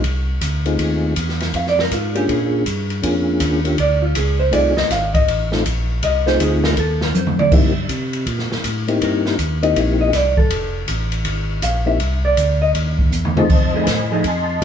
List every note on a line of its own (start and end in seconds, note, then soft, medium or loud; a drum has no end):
0.04 0.40 C2 medium
0.04 kick soft
0.04 ride medium
0.41 0.78 D2 medium
0.41 kick soft
0.41 hi-hat pedal medium
0.41 ride medium
0.65 1.14 A3 medium
0.65 1.14 C4 medium
0.65 1.14 D#4 medium
0.65 1.14 F4 medium
0.65 1.14 G#4 medium
0.65 ride soft
0.78 1.15 D#2 medium
0.78 kick soft
0.78 ride medium
1.16 1.53 E2 medium
1.16 kick soft
1.16 hi-hat pedal medium
1.16 ride medium
1.29 snare soft
1.40 snare soft
1.40 ride soft
1.54 1.90 F2 medium
1.54 1.67 F5 medium
1.54 kick soft
1.54 ride medium
1.67 1.80 D5 medium
1.67 snare soft
1.79 1.92 A#4 medium
1.79 snare soft
1.91 2.28 G#2 medium
1.91 2.15 F4 medium
1.91 kick soft
1.91 hi-hat pedal soft
1.91 ride medium
2.15 2.63 A#3 medium
2.15 2.63 C#4 medium
2.15 2.64 D4 medium
2.15 2.64 F4 medium
2.15 2.30 G4 medium
2.15 2.64 G#4 medium
2.15 ride soft
2.28 2.65 A#2 medium
2.28 3.04 G#4 medium
2.28 kick soft
2.28 ride medium
2.66 3.02 G2 medium
2.66 kick soft
2.66 hi-hat pedal medium
2.66 ride medium
2.90 ride soft
3.02 3.40 F2 medium
3.02 3.60 A#3 medium
3.02 3.60 C#4 medium
3.02 3.60 D4 medium
3.02 3.60 F4 medium
3.02 3.60 G#4 medium
3.02 kick soft
3.02 ride medium
3.40 3.77 D#2 medium
3.40 kick soft
3.40 hi-hat pedal medium
3.40 ride medium
3.65 3.77 A#3 medium
3.65 3.77 C#4 medium
3.65 3.77 D4 medium
3.65 3.77 F4 medium
3.65 3.78 G4 medium
3.65 ride medium
3.78 4.14 D2 medium
3.78 4.03 D5 medium
3.78 kick soft
3.78 ride medium
4.02 4.15 F4 medium
4.15 4.52 C#2 medium
4.15 4.40 G#4 medium
4.15 kick soft
4.15 hi-hat pedal medium
4.15 ride medium
4.39 4.53 C5 loud
4.51 4.75 C2 medium
4.51 4.74 A3 medium
4.51 4.74 C4 medium
4.51 4.74 D#4 medium
4.51 4.75 F4 medium
4.51 4.75 G#4 medium
4.51 4.77 D5 medium
4.51 kick soft
4.51 ride medium
4.77 4.83 C2 soft
4.77 4.90 D#5 loud
4.77 snare medium
4.90 5.27 G#1 medium
4.90 5.14 F5 loud
4.90 kick soft
4.90 snare soft
4.90 hi-hat pedal medium
4.90 ride medium
5.14 5.62 D#5 medium
5.14 kick medium
5.14 ride medium
5.28 5.64 A1 medium
5.28 kick soft
5.28 ride medium
5.52 5.64 A3 medium
5.52 5.64 C4 medium
5.52 5.64 D#4 medium
5.52 5.64 F4 medium
5.52 5.64 A4 medium
5.52 snare soft
5.65 6.01 A#1 medium
5.65 kick soft
5.65 hi-hat pedal soft
5.65 ride medium
6.03 6.39 C2 medium
6.03 6.27 D#5 medium
6.03 kick soft
6.03 ride medium
6.26 6.75 A3 medium
6.26 6.75 C4 medium
6.26 6.75 D#4 medium
6.26 6.75 F4 medium
6.26 6.75 G#4 medium
6.26 6.40 C5 loud
6.26 snare soft
6.40 6.76 D2 medium
6.40 6.64 G#4 medium
6.40 kick soft
6.40 hi-hat pedal soft
6.40 ride medium
6.64 6.77 A#4 medium
6.64 snare medium
6.77 7.13 D#2 medium
6.77 7.02 A4 medium
6.77 kick soft
6.77 ride medium
7.01 7.16 A#4 medium
7.01 snare medium
7.15 7.51 F2 medium
7.15 7.39 C5 medium
7.15 hi-hat pedal medium
7.15 high tom medium
7.27 mid tom medium
7.39 7.53 D5 loud
7.39 mid tom medium
7.51 7.88 G2 medium
7.51 7.73 A#3 medium
7.51 7.73 C4 medium
7.51 7.74 D#4 medium
7.51 7.74 E4 medium
7.51 7.74 G4 medium
7.51 8.27 E5 medium
7.51 kick medium
7.51 crash medium
7.89 8.26 C3 medium
7.89 kick soft
7.89 hi-hat pedal medium
7.89 ride medium
8.13 ride medium
8.26 8.49 A#2 medium
8.26 kick soft
8.26 ride medium
8.39 snare soft
8.51 8.58 A#2 soft
8.51 snare soft
8.64 9.00 A2 medium
8.64 kick soft
8.64 hi-hat pedal medium
8.64 ride medium
8.88 9.36 A#3 medium
8.88 9.36 C4 medium
8.88 9.36 D#4 medium
8.88 9.36 E4 medium
8.88 9.37 G4 medium
8.88 ride soft
9.01 9.38 G2 medium
9.01 9.60 A#4 medium
9.01 kick soft
9.01 ride medium
9.26 snare soft
9.39 9.75 D#2 medium
9.39 kick soft
9.39 hi-hat pedal medium
9.39 ride medium
9.63 10.11 A#3 medium
9.63 10.11 C4 medium
9.63 10.11 D#4 medium
9.63 10.11 E4 medium
9.63 10.11 G4 medium
9.63 9.78 D#5 medium
9.63 ride medium
9.76 10.12 A#1 medium
9.76 10.00 E5 medium
9.76 kick soft
9.76 ride medium
10.01 10.13 D#5 loud
10.13 10.49 C2 medium
10.13 10.38 D5 medium
10.13 kick soft
10.13 snare soft
10.13 hi-hat pedal medium
10.13 ride medium
10.37 10.84 A4 medium
10.37 kick medium
10.50 10.87 F1 loud
10.50 kick soft
10.50 ride medium
10.88 11.24 A1 medium
10.88 kick soft
10.88 hi-hat pedal soft
10.88 ride medium
11.12 ride medium
11.25 11.61 G#1 medium
11.25 kick soft
11.25 ride medium
11.62 11.99 A#1 medium
11.62 11.86 F5 medium
11.62 kick soft
11.62 hi-hat pedal medium
11.62 ride medium
11.86 11.98 A#3 medium
11.86 11.98 C4 medium
11.86 11.99 D#4 medium
11.86 11.99 E4 medium
11.86 11.99 G4 medium
11.86 12.22 E5 loud
12.00 12.36 C2 loud
12.00 kick soft
12.00 ride medium
12.25 12.59 D5 loud
12.37 12.74 D2 medium
12.37 kick soft
12.37 hi-hat pedal medium
12.37 ride medium
12.62 12.70 D#5 loud
12.74 13.11 D#2 medium
12.74 kick soft
12.74 ride medium
12.99 kick medium
13.12 13.48 E2 loud
13.12 hi-hat pedal medium
13.25 mid tom medium
13.36 13.48 A3 medium
13.36 13.48 C4 medium
13.36 13.48 D#4 medium
13.36 13.49 F4 medium
13.36 13.49 G#4 medium
13.36 14.08 C5 medium
13.36 13.75 D#5 medium
13.36 13.72 A5 loud
13.36 mid tom medium
13.50 13.86 F2 medium
13.50 kick medium
13.50 crash medium
13.74 13.86 F3 medium
13.74 13.86 A3 medium
13.74 13.86 D#4 medium
13.74 13.86 G#4 medium
13.74 14.25 D#5 medium
13.74 14.46 G#5 medium
13.74 14.13 B5 loud
13.87 14.23 A2 medium
13.87 kick soft
13.87 snare medium
13.87 hi-hat pedal medium
13.87 ride medium
14.11 14.23 F3 medium
14.11 14.23 A3 medium
14.11 14.23 D#4 medium
14.11 14.23 G#4 medium
14.11 14.17 A5 medium
14.21 14.60 F2 medium
14.21 14.25 B5 medium
14.21 kick soft
14.21 ride medium
14.26 14.64 D#5 medium
14.26 14.64 A5 medium
14.26 14.60 C6 loud